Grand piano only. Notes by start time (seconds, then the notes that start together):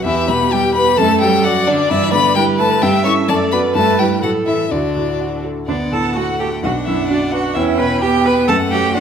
0.04 E2
0.28 B2
0.51 G4
0.75 B4
0.98 F#2
1.21 F#3
1.45 F#4
1.67 D5
1.91 G2
2.14 D3
2.37 E4
2.60 B4
2.83 G2
3.06 E4 A4
3.29 F#2
3.53 F#4 A4
3.75 G2
4.00 E4 B4
4.23 A2
4.47 E4 A4
4.72 D2
4.96 A2
5.21 F#4
5.45 A4
5.68 D2
5.92 A2
6.16 F#4
6.40 A4
6.63 B1
6.87 F#2
7.10 F#4
7.33 B4
7.56 E2
7.79 B2
8.02 G4
8.25 B4
8.48 F#2
8.72 F#3
8.94 D4